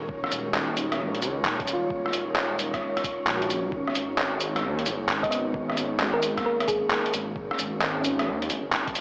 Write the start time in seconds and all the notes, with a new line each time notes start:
Already playing: D#3 G#3 C#4 D#4 F#4 A#4 C#5
0.09 D#1, kick
0.24 cross-stick
0.32 D#1, closed hi-hat, cabasa
0.54 clap
0.77 closed hi-hat, cabasa
0.92 cross-stick, closed hi-hat
1.00 A#1
1.15 closed hi-hat
1.22 C#2, closed hi-hat, cabasa
1.45 D#1, clap
1.60 kick, closed hi-hat
1.67 closed hi-hat, cabasa
1.73 F4
1.90 kick
2.06 cross-stick
2.13 D#1, closed hi-hat, cabasa
2.36 clap
2.59 closed hi-hat, cabasa
2.74 kick, cross-stick, closed hi-hat
2.97 cross-stick, closed hi-hat
3.04 kick, closed hi-hat, cabasa
3.27 A#1, clap
3.37 F#4
3.42 closed hi-hat
3.50 closed hi-hat, cabasa
3.64 C#2
3.72 G#1 D#3 C#4, kick
3.88 cross-stick
3.95 G#1, closed hi-hat, cabasa
4.00 G#3 C#4
4.18 clap
4.40 closed hi-hat, cabasa
4.56 cross-stick, closed hi-hat
4.64 D#2
4.79 closed hi-hat
4.86 F#1, closed hi-hat, cabasa
5.09 G#1, clap
5.23 B3 D#5, kick, closed hi-hat
5.31 D#5, closed hi-hat, cabasa
5.54 kick
5.70 cross-stick
5.77 G#1, closed hi-hat, cabasa
6.00 G#3, clap
6.14 A#4
6.23 closed hi-hat, cabasa
6.37 A#3, kick, cross-stick, closed hi-hat
6.46 A#4
6.60 cross-stick, closed hi-hat
6.68 G#1 G#4, kick, closed hi-hat, cabasa
6.90 clap
7.06 closed hi-hat
7.14 G#1, closed hi-hat, cabasa
7.36 G#1, kick
7.51 cross-stick
7.59 G#1, closed hi-hat, cabasa
7.82 clap
8.01 C#4, closed hi-hat, cabasa
8.19 cross-stick, closed hi-hat
8.27 D#2
8.42 closed hi-hat
8.49 F#1, closed hi-hat, cabasa
8.71 G#1, clap
8.87 kick, closed hi-hat
8.95 closed hi-hat, cabasa